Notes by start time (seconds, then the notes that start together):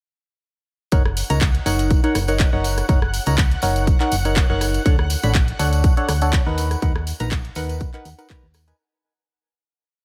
0.92 F#1 D#4 A#4 C#5 F#5 F#6, kick, closed hi-hat, tambourine
1.05 cross-stick
1.17 open hi-hat, tambourine
1.30 C#2 D#4 A#4 C#5 A#5, closed hi-hat, tambourine
1.41 kick, clap, closed hi-hat
1.55 closed hi-hat
1.66 F#1 D#4 A#4 C#5 F#5, open hi-hat, tambourine
1.79 closed hi-hat, tambourine
1.90 kick, closed hi-hat, tambourine
2.04 D#4 A#4 C#5 F#5, closed hi-hat
2.15 F#1, cross-stick, open hi-hat, tambourine
2.28 D#4 A#4 C#5 F#5, closed hi-hat, tambourine
2.40 kick, clap, closed hi-hat
2.53 F#1 D#4 A#4 C#5 F#5
2.64 open hi-hat, tambourine
2.78 cross-stick, closed hi-hat, tambourine
2.89 F#1 D#4 A#4 C#5 F#5, kick, closed hi-hat, tambourine
3.02 cross-stick
3.14 open hi-hat, tambourine
3.26 C#2 D#4 A#4 C#5 A#5, closed hi-hat, tambourine
3.38 kick, clap, closed hi-hat
3.51 closed hi-hat
3.62 F#1 D#4 A#4 C#5 F#5, open hi-hat, tambourine
3.76 closed hi-hat, tambourine
3.87 kick, closed hi-hat, tambourine
4.00 D#4 A#4 C#5 F#5, clap, closed hi-hat
4.12 F#1, open hi-hat, tambourine
4.25 D#4 A#4 C#5 F#5, closed hi-hat, tambourine
4.36 kick, clap, closed hi-hat, tambourine
4.50 F#1 D#4 A#4 C#5 F#5
4.61 cross-stick, open hi-hat, tambourine
4.74 closed hi-hat, tambourine
4.86 D2 D4 A4 C#5 F#5, kick, closed hi-hat, tambourine
4.99 cross-stick
5.10 open hi-hat, tambourine
5.23 A1 D4 A4 C#5 B5, closed hi-hat, tambourine
5.35 kick, clap, closed hi-hat
5.48 closed hi-hat
5.59 D2 D4 A4 C#5 F#5, open hi-hat, tambourine
5.73 closed hi-hat, tambourine
5.84 kick, closed hi-hat, tambourine
5.97 D4 A4 C#5 F#5, closed hi-hat
6.08 D2, cross-stick, open hi-hat, tambourine
6.21 D4 A4 C#5 F#5, closed hi-hat, tambourine
6.33 kick, clap, closed hi-hat, tambourine
6.46 D#2 D#4 A#4 B4 F#5
6.58 open hi-hat, tambourine
6.71 cross-stick, closed hi-hat, tambourine
6.82 D#2 D#4 A#4 B4 F#5, kick, closed hi-hat, tambourine
6.96 cross-stick
7.07 open hi-hat, tambourine
7.20 A#1 D#4 A#4 B4 A#5, closed hi-hat, tambourine
7.31 kick, clap, closed hi-hat, tambourine
7.45 closed hi-hat
7.55 D#2 D#4 A#4 B4 F#5, open hi-hat, tambourine
7.69 closed hi-hat, tambourine
7.80 kick, closed hi-hat, tambourine
7.94 D#4 A#4 B4 F#5, clap, closed hi-hat
8.05 D#2, open hi-hat, tambourine
8.18 D#4 A#4 B4 F#5, closed hi-hat, tambourine
8.30 D#4 A#4 B4 A#5, kick, clap, closed hi-hat
8.43 D#2
8.54 cross-stick, open hi-hat, tambourine
8.68 D#4 A#4 B4 G#5, closed hi-hat, tambourine